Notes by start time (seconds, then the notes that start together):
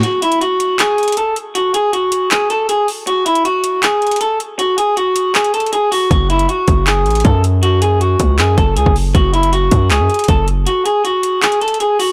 0.03 F#4, closed hi-hat
0.22 E4, closed hi-hat
0.32 closed hi-hat
0.41 F#4, closed hi-hat
0.60 closed hi-hat
0.79 G#4, clap, closed hi-hat
0.98 closed hi-hat
1.03 closed hi-hat
1.08 closed hi-hat
1.12 closed hi-hat
1.17 A4, closed hi-hat
1.36 closed hi-hat
1.55 F#4, closed hi-hat
1.74 G#4, closed hi-hat
1.93 F#4, closed hi-hat
2.12 closed hi-hat
2.31 G#4, clap, closed hi-hat
2.50 A4, closed hi-hat
2.69 G#4, closed hi-hat
2.88 open hi-hat
3.07 F#4, closed hi-hat
3.26 E4, closed hi-hat
3.35 closed hi-hat
3.45 F#4, closed hi-hat
3.64 closed hi-hat
3.83 G#4, clap, closed hi-hat
4.02 closed hi-hat
4.07 closed hi-hat
4.11 closed hi-hat
4.16 closed hi-hat
4.21 A4, closed hi-hat
4.40 closed hi-hat
4.59 F#4, closed hi-hat
4.78 G#4, closed hi-hat
4.97 F#4, closed hi-hat
5.16 closed hi-hat
5.35 G#4, clap, closed hi-hat
5.44 closed hi-hat
5.54 A4, closed hi-hat
5.60 closed hi-hat
5.66 closed hi-hat
5.73 G#4, closed hi-hat
5.92 F#4, open hi-hat
6.11 F#1 F#4, kick, closed hi-hat
6.30 E4, closed hi-hat
6.39 closed hi-hat
6.49 F#4, closed hi-hat
6.68 F#1, kick, closed hi-hat
6.87 G#4, clap, closed hi-hat
7.06 A1, closed hi-hat
7.11 closed hi-hat
7.15 closed hi-hat
7.20 closed hi-hat
7.25 F#2 A4, kick, closed hi-hat
7.44 closed hi-hat
7.63 F#4, closed hi-hat
7.82 G#4, closed hi-hat
8.01 F#4, closed hi-hat
8.20 C#2, kick, closed hi-hat
8.38 F#2 G#4, clap, closed hi-hat
8.58 F#1 A4, kick, closed hi-hat
8.77 C#2 G#4, closed hi-hat
8.86 F#1, kick
8.96 open hi-hat
9.15 F#1 F#4, kick, closed hi-hat
9.33 E4, closed hi-hat
9.43 closed hi-hat
9.53 F#4, closed hi-hat
9.71 F#2, kick, closed hi-hat
9.90 C#2 G#4, clap, closed hi-hat
10.00 F#2
10.10 closed hi-hat
10.14 closed hi-hat
10.19 closed hi-hat
10.24 closed hi-hat
10.28 F#1 A4, kick, closed hi-hat
10.48 closed hi-hat
10.67 F#4, closed hi-hat
10.85 G#4, closed hi-hat
11.04 F#4, closed hi-hat
11.23 closed hi-hat
11.42 G#4, clap, closed hi-hat
11.52 closed hi-hat
11.61 A4, closed hi-hat
11.68 closed hi-hat
11.74 closed hi-hat
11.80 G#4, closed hi-hat
11.99 F#4, open hi-hat